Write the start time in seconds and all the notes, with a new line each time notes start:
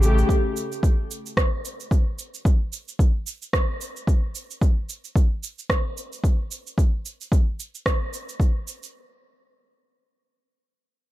Already playing: A1
0.03 C#3 A3 G4, cabasa
0.18 cabasa
0.29 kick, cabasa
0.57 cabasa
0.72 cabasa
0.83 kick, cabasa
1.11 cabasa
1.26 cabasa
1.37 kick, cross-stick, cabasa
1.65 cabasa
1.80 cabasa
1.91 kick, cabasa
2.19 cabasa
2.34 cabasa
2.45 kick, cabasa
2.73 cabasa
2.88 cabasa
2.99 kick, cabasa
3.27 cabasa
3.42 cabasa
3.53 kick, cross-stick, cabasa
3.81 cabasa
3.97 cabasa
4.07 kick, cabasa
4.35 cabasa
4.51 cabasa
4.62 kick, cabasa
4.89 cabasa
5.05 cabasa
5.16 kick, cabasa
5.43 cabasa
5.59 cabasa
5.70 kick, cross-stick, cabasa
5.98 cabasa
6.13 cabasa
6.24 kick, cabasa
6.51 cabasa
6.67 cabasa
6.78 kick, cabasa
7.06 cabasa
7.21 cabasa
7.32 kick, cabasa
7.60 cabasa
7.75 cabasa
7.86 kick, cross-stick, cabasa
8.14 cabasa
8.29 cabasa
8.40 kick, cabasa
8.68 cabasa
8.83 cabasa